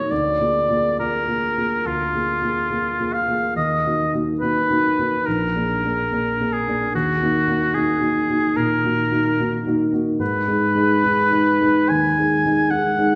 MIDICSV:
0, 0, Header, 1, 3, 480
1, 0, Start_track
1, 0, Tempo, 870827
1, 61, Time_signature, 4, 2, 24, 8
1, 1021, Tempo, 849858
1, 3421, Tempo, 820793
1, 6301, Tempo, 869565
1, 6781, Tempo, 816327
1, 7520, End_track
2, 0, Start_track
2, 0, Title_t, "Oboe"
2, 0, Program_c, 0, 68
2, 0, Note_on_c, 0, 73, 44
2, 60, Note_on_c, 0, 74, 44
2, 69, Note_off_c, 0, 73, 0
2, 544, Note_off_c, 0, 74, 0
2, 548, Note_on_c, 0, 70, 39
2, 1029, Note_on_c, 0, 65, 41
2, 1038, Note_off_c, 0, 70, 0
2, 1746, Note_on_c, 0, 77, 48
2, 1754, Note_off_c, 0, 65, 0
2, 1987, Note_off_c, 0, 77, 0
2, 1989, Note_on_c, 0, 75, 46
2, 2306, Note_off_c, 0, 75, 0
2, 2464, Note_on_c, 0, 71, 46
2, 2947, Note_on_c, 0, 70, 40
2, 2956, Note_off_c, 0, 71, 0
2, 3668, Note_on_c, 0, 68, 45
2, 3677, Note_off_c, 0, 70, 0
2, 3909, Note_off_c, 0, 68, 0
2, 3918, Note_on_c, 0, 66, 46
2, 4379, Note_on_c, 0, 68, 44
2, 4388, Note_off_c, 0, 66, 0
2, 4861, Note_on_c, 0, 70, 47
2, 4870, Note_off_c, 0, 68, 0
2, 5586, Note_off_c, 0, 70, 0
2, 5822, Note_on_c, 0, 71, 56
2, 6778, Note_on_c, 0, 80, 56
2, 6787, Note_off_c, 0, 71, 0
2, 7260, Note_on_c, 0, 78, 55
2, 7268, Note_off_c, 0, 80, 0
2, 7520, Note_off_c, 0, 78, 0
2, 7520, End_track
3, 0, Start_track
3, 0, Title_t, "Grand piano"
3, 0, Program_c, 1, 0
3, 0, Control_c, 1, 64, 127
3, 0, Note_on_c, 1, 46, 22
3, 0, Note_on_c, 1, 58, 22
3, 0, Note_on_c, 1, 63, 19
3, 0, Note_on_c, 1, 66, 21
3, 60, Note_on_c, 1, 38, 29
3, 68, Control_c, 1, 64, 0
3, 71, Note_off_c, 1, 63, 0
3, 72, Note_off_c, 1, 46, 0
3, 72, Note_off_c, 1, 66, 0
3, 74, Note_off_c, 1, 58, 0
3, 173, Control_c, 1, 64, 127
3, 216, Note_off_c, 1, 38, 0
3, 221, Note_on_c, 1, 58, 16
3, 226, Note_on_c, 1, 65, 17
3, 227, Note_on_c, 1, 68, 20
3, 368, Note_off_c, 1, 58, 0
3, 370, Note_off_c, 1, 65, 0
3, 371, Note_off_c, 1, 68, 0
3, 382, Note_on_c, 1, 58, 23
3, 384, Note_on_c, 1, 65, 22
3, 387, Note_on_c, 1, 68, 22
3, 528, Note_off_c, 1, 58, 0
3, 529, Note_off_c, 1, 65, 0
3, 531, Note_off_c, 1, 68, 0
3, 548, Note_on_c, 1, 58, 18
3, 548, Note_on_c, 1, 65, 18
3, 549, Note_on_c, 1, 68, 18
3, 691, Note_off_c, 1, 58, 0
3, 691, Note_off_c, 1, 65, 0
3, 692, Note_off_c, 1, 68, 0
3, 702, Note_on_c, 1, 58, 18
3, 704, Note_on_c, 1, 65, 20
3, 706, Note_on_c, 1, 68, 19
3, 846, Note_off_c, 1, 58, 0
3, 847, Note_off_c, 1, 65, 0
3, 848, Note_off_c, 1, 68, 0
3, 868, Note_on_c, 1, 58, 19
3, 869, Note_on_c, 1, 65, 18
3, 869, Note_on_c, 1, 68, 22
3, 1008, Note_off_c, 1, 58, 0
3, 1008, Note_off_c, 1, 65, 0
3, 1009, Note_off_c, 1, 68, 0
3, 1022, Note_on_c, 1, 38, 23
3, 1178, Note_off_c, 1, 38, 0
3, 1185, Note_on_c, 1, 58, 17
3, 1186, Note_on_c, 1, 65, 18
3, 1191, Note_on_c, 1, 68, 19
3, 1327, Note_off_c, 1, 58, 0
3, 1328, Note_off_c, 1, 65, 0
3, 1331, Note_off_c, 1, 68, 0
3, 1339, Note_on_c, 1, 58, 20
3, 1342, Note_on_c, 1, 65, 17
3, 1348, Note_on_c, 1, 68, 21
3, 1484, Note_off_c, 1, 58, 0
3, 1485, Note_off_c, 1, 65, 0
3, 1489, Note_off_c, 1, 68, 0
3, 1501, Note_on_c, 1, 58, 18
3, 1503, Note_on_c, 1, 65, 21
3, 1505, Note_on_c, 1, 68, 21
3, 1645, Note_off_c, 1, 58, 0
3, 1646, Note_off_c, 1, 65, 0
3, 1648, Note_off_c, 1, 68, 0
3, 1668, Note_on_c, 1, 58, 21
3, 1669, Note_on_c, 1, 65, 21
3, 1674, Note_on_c, 1, 68, 22
3, 1811, Note_off_c, 1, 58, 0
3, 1811, Note_off_c, 1, 65, 0
3, 1814, Note_off_c, 1, 68, 0
3, 1825, Note_on_c, 1, 58, 21
3, 1826, Note_on_c, 1, 65, 21
3, 1830, Note_on_c, 1, 68, 24
3, 1970, Note_off_c, 1, 58, 0
3, 1970, Note_off_c, 1, 65, 0
3, 1973, Note_off_c, 1, 68, 0
3, 1985, Note_on_c, 1, 39, 32
3, 1995, Control_c, 1, 64, 0
3, 2090, Control_c, 1, 64, 127
3, 2142, Note_off_c, 1, 39, 0
3, 2155, Note_on_c, 1, 58, 19
3, 2155, Note_on_c, 1, 63, 18
3, 2158, Note_on_c, 1, 66, 20
3, 2296, Note_off_c, 1, 58, 0
3, 2296, Note_off_c, 1, 63, 0
3, 2298, Note_off_c, 1, 66, 0
3, 2311, Note_on_c, 1, 58, 22
3, 2315, Note_on_c, 1, 63, 24
3, 2317, Note_on_c, 1, 66, 24
3, 2454, Note_off_c, 1, 58, 0
3, 2456, Note_off_c, 1, 63, 0
3, 2457, Note_off_c, 1, 66, 0
3, 2472, Note_on_c, 1, 58, 17
3, 2473, Note_on_c, 1, 63, 21
3, 2476, Note_on_c, 1, 66, 23
3, 2614, Note_off_c, 1, 58, 0
3, 2615, Note_off_c, 1, 63, 0
3, 2616, Note_off_c, 1, 66, 0
3, 2628, Note_on_c, 1, 58, 18
3, 2633, Note_on_c, 1, 63, 20
3, 2634, Note_on_c, 1, 66, 25
3, 2771, Note_off_c, 1, 58, 0
3, 2774, Note_off_c, 1, 63, 0
3, 2774, Note_off_c, 1, 66, 0
3, 2793, Note_on_c, 1, 58, 18
3, 2794, Note_on_c, 1, 63, 20
3, 2795, Note_on_c, 1, 66, 22
3, 2932, Note_off_c, 1, 58, 0
3, 2933, Note_off_c, 1, 63, 0
3, 2933, Note_off_c, 1, 66, 0
3, 2953, Control_c, 1, 64, 0
3, 2955, Note_on_c, 1, 34, 28
3, 3051, Control_c, 1, 64, 127
3, 3103, Note_off_c, 1, 34, 0
3, 3112, Note_on_c, 1, 58, 19
3, 3114, Note_on_c, 1, 62, 20
3, 3116, Note_on_c, 1, 68, 22
3, 3250, Note_off_c, 1, 58, 0
3, 3251, Note_off_c, 1, 62, 0
3, 3252, Note_off_c, 1, 68, 0
3, 3275, Note_on_c, 1, 58, 20
3, 3276, Note_on_c, 1, 68, 24
3, 3278, Note_on_c, 1, 62, 21
3, 3412, Note_off_c, 1, 58, 0
3, 3413, Note_off_c, 1, 68, 0
3, 3414, Note_off_c, 1, 62, 0
3, 3428, Note_on_c, 1, 58, 21
3, 3429, Note_on_c, 1, 62, 21
3, 3433, Note_on_c, 1, 68, 23
3, 3573, Note_off_c, 1, 58, 0
3, 3574, Note_off_c, 1, 62, 0
3, 3576, Note_off_c, 1, 68, 0
3, 3596, Note_on_c, 1, 58, 23
3, 3597, Note_on_c, 1, 62, 20
3, 3600, Note_on_c, 1, 68, 26
3, 3739, Note_off_c, 1, 58, 0
3, 3739, Note_off_c, 1, 62, 0
3, 3741, Note_off_c, 1, 68, 0
3, 3755, Note_on_c, 1, 58, 23
3, 3761, Note_on_c, 1, 68, 25
3, 3762, Note_on_c, 1, 62, 24
3, 3896, Note_off_c, 1, 58, 0
3, 3899, Note_off_c, 1, 68, 0
3, 3900, Note_off_c, 1, 62, 0
3, 3916, Note_on_c, 1, 39, 33
3, 3917, Control_c, 1, 64, 0
3, 4002, Control_c, 1, 64, 127
3, 4064, Note_off_c, 1, 39, 0
3, 4076, Note_on_c, 1, 58, 21
3, 4078, Note_on_c, 1, 63, 20
3, 4079, Note_on_c, 1, 66, 21
3, 4211, Note_off_c, 1, 58, 0
3, 4212, Note_off_c, 1, 63, 0
3, 4213, Note_off_c, 1, 66, 0
3, 4226, Note_on_c, 1, 58, 26
3, 4227, Note_on_c, 1, 63, 24
3, 4231, Note_on_c, 1, 66, 28
3, 4365, Note_off_c, 1, 58, 0
3, 4366, Note_off_c, 1, 63, 0
3, 4368, Note_off_c, 1, 66, 0
3, 4383, Note_on_c, 1, 58, 22
3, 4388, Note_on_c, 1, 66, 22
3, 4389, Note_on_c, 1, 63, 21
3, 4524, Note_off_c, 1, 58, 0
3, 4527, Note_off_c, 1, 63, 0
3, 4527, Note_off_c, 1, 66, 0
3, 4535, Note_on_c, 1, 58, 21
3, 4536, Note_on_c, 1, 63, 22
3, 4540, Note_on_c, 1, 66, 26
3, 4681, Note_off_c, 1, 58, 0
3, 4681, Note_off_c, 1, 63, 0
3, 4683, Note_off_c, 1, 66, 0
3, 4703, Note_on_c, 1, 58, 20
3, 4707, Note_on_c, 1, 63, 21
3, 4708, Note_on_c, 1, 66, 22
3, 4845, Note_off_c, 1, 58, 0
3, 4848, Note_off_c, 1, 63, 0
3, 4848, Note_off_c, 1, 66, 0
3, 4860, Note_on_c, 1, 46, 26
3, 5016, Note_off_c, 1, 46, 0
3, 5024, Note_on_c, 1, 58, 19
3, 5026, Note_on_c, 1, 63, 23
3, 5029, Note_on_c, 1, 66, 24
3, 5169, Note_off_c, 1, 58, 0
3, 5170, Note_off_c, 1, 63, 0
3, 5171, Note_off_c, 1, 66, 0
3, 5183, Note_on_c, 1, 58, 22
3, 5186, Note_on_c, 1, 63, 22
3, 5186, Note_on_c, 1, 66, 23
3, 5329, Note_off_c, 1, 58, 0
3, 5330, Note_off_c, 1, 66, 0
3, 5331, Note_off_c, 1, 63, 0
3, 5347, Note_on_c, 1, 58, 23
3, 5349, Note_on_c, 1, 63, 24
3, 5352, Note_on_c, 1, 66, 26
3, 5490, Note_off_c, 1, 58, 0
3, 5491, Note_off_c, 1, 63, 0
3, 5493, Note_off_c, 1, 66, 0
3, 5504, Note_on_c, 1, 58, 26
3, 5507, Note_on_c, 1, 63, 26
3, 5510, Note_on_c, 1, 66, 24
3, 5647, Note_off_c, 1, 58, 0
3, 5648, Note_off_c, 1, 63, 0
3, 5650, Note_off_c, 1, 66, 0
3, 5657, Note_on_c, 1, 58, 26
3, 5660, Note_on_c, 1, 63, 25
3, 5665, Note_on_c, 1, 66, 28
3, 5801, Note_off_c, 1, 58, 0
3, 5803, Note_off_c, 1, 63, 0
3, 5806, Note_off_c, 1, 66, 0
3, 5815, Note_on_c, 1, 44, 34
3, 5831, Control_c, 1, 64, 0
3, 5923, Control_c, 1, 64, 127
3, 5971, Note_off_c, 1, 44, 0
3, 5980, Note_on_c, 1, 56, 21
3, 5981, Note_on_c, 1, 63, 23
3, 5983, Note_on_c, 1, 68, 25
3, 6124, Note_off_c, 1, 56, 0
3, 6124, Note_off_c, 1, 63, 0
3, 6126, Note_off_c, 1, 68, 0
3, 6137, Note_on_c, 1, 56, 28
3, 6141, Note_on_c, 1, 63, 26
3, 6144, Note_on_c, 1, 68, 28
3, 6284, Note_off_c, 1, 56, 0
3, 6286, Note_off_c, 1, 63, 0
3, 6287, Note_off_c, 1, 68, 0
3, 6304, Note_on_c, 1, 56, 25
3, 6305, Note_on_c, 1, 63, 24
3, 6310, Note_on_c, 1, 68, 26
3, 6444, Note_off_c, 1, 56, 0
3, 6444, Note_off_c, 1, 63, 0
3, 6447, Note_off_c, 1, 68, 0
3, 6460, Note_on_c, 1, 56, 23
3, 6461, Note_on_c, 1, 63, 24
3, 6464, Note_on_c, 1, 68, 28
3, 6606, Note_off_c, 1, 56, 0
3, 6606, Note_off_c, 1, 63, 0
3, 6608, Note_off_c, 1, 68, 0
3, 6621, Note_on_c, 1, 56, 23
3, 6624, Note_on_c, 1, 68, 25
3, 6625, Note_on_c, 1, 63, 23
3, 6765, Note_off_c, 1, 56, 0
3, 6766, Note_off_c, 1, 68, 0
3, 6767, Note_off_c, 1, 63, 0
3, 6782, Note_on_c, 1, 39, 29
3, 6941, Note_off_c, 1, 39, 0
3, 6947, Note_on_c, 1, 56, 25
3, 6949, Note_on_c, 1, 63, 26
3, 6951, Note_on_c, 1, 68, 24
3, 7089, Note_off_c, 1, 56, 0
3, 7090, Note_off_c, 1, 63, 0
3, 7091, Note_off_c, 1, 68, 0
3, 7107, Note_on_c, 1, 56, 23
3, 7110, Note_on_c, 1, 63, 26
3, 7110, Note_on_c, 1, 68, 27
3, 7248, Note_off_c, 1, 56, 0
3, 7249, Note_off_c, 1, 63, 0
3, 7250, Note_off_c, 1, 68, 0
3, 7258, Note_on_c, 1, 56, 28
3, 7262, Note_on_c, 1, 63, 25
3, 7265, Note_on_c, 1, 68, 29
3, 7403, Note_off_c, 1, 56, 0
3, 7405, Note_off_c, 1, 63, 0
3, 7406, Note_off_c, 1, 68, 0
3, 7421, Note_on_c, 1, 63, 26
3, 7422, Note_on_c, 1, 56, 26
3, 7428, Note_on_c, 1, 68, 29
3, 7520, Note_off_c, 1, 56, 0
3, 7520, Note_off_c, 1, 63, 0
3, 7520, Note_off_c, 1, 68, 0
3, 7520, End_track
0, 0, End_of_file